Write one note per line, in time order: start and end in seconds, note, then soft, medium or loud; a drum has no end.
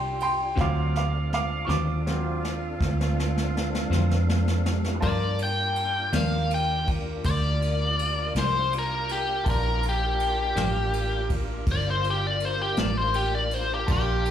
0.00 0.54 C2 loud
0.00 0.53 G3 medium
0.00 0.53 A3 soft
0.00 0.54 A#3 soft
0.00 0.53 D4 medium
0.00 0.53 F4 medium
0.00 0.54 F4 soft
0.00 0.53 G4 medium
0.00 0.56 G4 medium
0.00 0.19 G5 medium
0.00 0.21 C6 medium
0.20 0.56 G5 medium
0.20 0.58 C6 medium
0.20 ride medium
0.56 1.66 D2 medium
0.56 0.79 D3 medium
0.56 0.80 F#3 medium
0.56 0.79 C4 medium
0.56 4.79 C4 medium
0.56 4.83 C4 medium
0.56 4.82 D4 medium
0.56 0.80 F4 medium
0.56 4.83 F4 loud
0.56 4.93 A4 medium
0.56 4.98 F5 medium
0.56 kick loud
0.56 snare medium
0.60 1.08 F#3 soft
0.60 1.09 C4 soft
0.60 1.09 F4 medium
0.60 0.94 F5 medium
0.60 0.95 D6 medium
0.96 1.31 F5 medium
0.96 1.32 D6 medium
0.96 snare medium
1.33 1.68 F5 medium
1.33 1.68 D6 medium
1.33 snare medium
1.65 2.77 D#2 medium
1.65 1.91 D3 medium
1.65 1.91 F#3 medium
1.65 1.91 C4 medium
1.65 1.90 F4 medium
1.65 1.69 C#6 medium
1.69 3.87 D6 medium
1.69 snare medium
2.06 2.39 F#3 soft
2.06 2.40 C4 soft
2.06 2.40 F4 soft
2.06 snare medium
2.45 snare medium
2.80 3.88 D2 medium
2.80 kick loud
2.80 snare medium
3.01 snare medium
3.20 snare medium
3.38 snare medium
3.57 snare medium
3.75 snare medium
3.90 4.98 F2 medium
3.90 4.14 D3 medium
3.90 4.13 F#3 medium
3.90 4.14 C4 medium
3.90 4.13 F4 medium
3.90 snare medium
4.11 snare medium
4.30 snare loud
4.48 snare medium
4.66 snare loud
4.71 4.96 G3 medium
4.71 4.98 A3 medium
4.77 4.98 B3 medium
4.77 5.00 C4 medium
4.83 5.01 D4 medium
4.83 5.02 E4 medium
4.83 snare medium
4.88 5.00 F4 medium
4.88 5.06 G4 medium
4.94 5.07 A4 medium
4.94 5.08 B4 medium
5.00 5.24 G2 medium
5.00 6.10 G2 medium
5.00 5.25 F3 medium
5.00 9.42 A#3 medium
5.00 5.25 A#3 medium
5.00 9.42 D4 medium
5.00 5.25 D4 medium
5.00 14.31 F4 medium
5.00 9.41 F4 medium
5.00 14.31 G4 medium
5.00 14.31 A#4 medium
5.00 9.42 A#4 medium
5.00 5.10 C5 medium
5.00 9.42 D5 medium
5.00 5.39 D5 medium
5.00 9.41 A5 soft
5.00 kick loud
5.00 ride medium
5.39 ride medium
5.43 6.13 G5 medium
5.76 ride medium
6.13 7.21 D#2 medium
6.13 6.36 G2 medium
6.13 6.35 F3 medium
6.13 6.36 A#3 medium
6.13 6.35 D4 medium
6.13 6.50 F5 medium
6.13 snare loud
6.13 ride medium
6.50 6.88 G5 medium
6.50 ride medium
6.87 kick medium
6.87 ride medium
7.24 8.32 D2 medium
7.24 8.33 D5 loud
7.24 kick loud
7.24 ride medium
7.62 ride medium
7.99 ride medium
8.35 9.43 C2 medium
8.35 8.59 G2 medium
8.35 8.58 F3 soft
8.35 8.59 A#3 medium
8.35 8.58 D4 medium
8.35 8.73 C5 medium
8.35 snare loud
8.35 ride medium
8.73 ride medium
8.79 9.11 A#4 medium
9.09 9.47 G4 medium
9.09 ride medium
9.43 10.54 A#1 medium
9.43 9.84 B3 medium
9.43 9.83 D#4 medium
9.43 13.84 F4 soft
9.43 9.83 F4 medium
9.43 13.84 A#4 soft
9.43 9.84 A#4 medium
9.43 13.85 D5 medium
9.43 13.84 A5 soft
9.43 kick loud
9.43 ride medium
9.50 9.84 A#4 medium
9.83 13.85 A#3 medium
9.83 13.86 D4 medium
9.83 13.85 F4 medium
9.83 ride medium
9.89 11.30 G4 medium
10.20 ride medium
10.56 11.64 A1 medium
10.56 10.79 G2 medium
10.56 10.79 F3 medium
10.56 10.79 A#3 medium
10.56 10.78 D4 medium
10.56 snare loud
10.56 ride medium
10.93 ride medium
11.30 kick medium
11.30 ride medium
11.67 12.75 G1 medium
11.67 kick loud
11.67 ride medium
11.72 11.88 D5 loud
11.90 12.06 C5 medium
12.04 ride medium
12.11 12.26 G4 medium
12.27 12.45 D5 medium
12.40 ride medium
12.45 12.61 C5 loud
12.62 12.79 G4 medium
12.77 13.85 A1 medium
12.77 13.01 G2 medium
12.77 13.00 F3 medium
12.77 13.00 A#3 medium
12.77 13.00 D4 medium
12.77 12.97 D5 medium
12.77 snare loud
12.77 ride medium
12.97 13.15 C5 medium
13.14 13.33 G4 medium
13.14 ride medium
13.35 13.54 D5 medium
13.51 13.71 C5 medium
13.51 ride medium
13.74 13.90 G4 loud
13.86 14.31 A#1 medium
13.86 14.31 A#3 medium
13.86 14.31 D4 medium
13.86 14.31 F4 medium
13.86 14.31 A#4 soft
13.86 14.31 D5 medium
13.86 14.31 A5 soft
13.86 kick loud
13.86 ride medium
13.92 14.31 G4 loud
14.25 ride medium